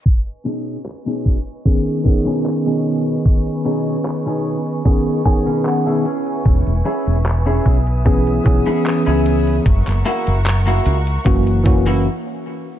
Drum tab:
HH |xxxx-xxxxxxxxxxx|xxxxxxxxxxxxxxxx|xxxxxxxxxxxxxxxx|xxxxxxxxxxxx----|
CP |----x-------x---|----x-------x---|----x-------x---|-x--x-----------|
BD |o-----o-o-o-----|o-------o-o-----|o-----o-o-o-----|o-------o-o-----|